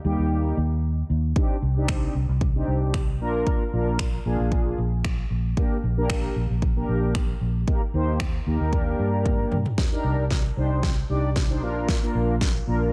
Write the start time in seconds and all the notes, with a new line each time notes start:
0.04 D#2 G3 A#3 D#4 G4
0.19 D#2
0.57 D#2
1.10 D#2
1.36 C4 D4 D#4 G4, kick
1.62 C2
1.76 C4 D4 D#4 G4
1.88 finger snap, kick
2.15 C2
2.29 C2
2.41 kick
2.55 C4 D4 D#4 G4
2.68 C2
2.94 finger snap, kick
3.20 A#1 A#3 D4 F4 A#4
3.47 kick
3.73 A#1 A#3 D4 F4 A#4
3.99 finger snap, kick
4.25 A#1 A#3 D4 F4 G#4
4.39 A#1
4.52 kick
4.78 A#1
5.05 finger snap, kick
5.30 A#1
5.57 A#3 D4 G4 A#4, kick
5.83 A#1
5.97 A#3 D4 G4 A#4
6.10 finger snap, kick
6.36 A#1
6.50 A#1
6.62 kick
6.76 A#3 D4 G4 A#4
6.89 A#1
7.15 finger snap, kick
7.41 A#1
7.67 A#3 D#4 G4 A#4, kick
7.94 D#2 A#3 D#4 G4 C5
8.20 finger snap, kick
8.46 D#2 A#3 D#4 G4 A#4
8.60 D#2
8.73 A#3 D4 G4 A#4, kick
8.99 G2
9.25 kick, high tom
9.52 G2, mid tom
9.66 floor tom
9.78 G4 C5, kick, snare
9.92 D4 D#4 G4 A#4
10.04 C2
10.31 kick, snare
10.57 C2 D4 D#4 G4 C5
10.83 kick, snare
11.09 C2 D4 D#4 G4 D5
11.36 kick, snare
11.50 D4 D#4 G4 C5
11.62 A#1 A#3 D4 F4 A#4
11.89 kick, snare
12.02 A#3 D4 F4 A#4
12.15 A#1
12.41 kick, snare
12.67 A#1 A#3 D4 F4 A#4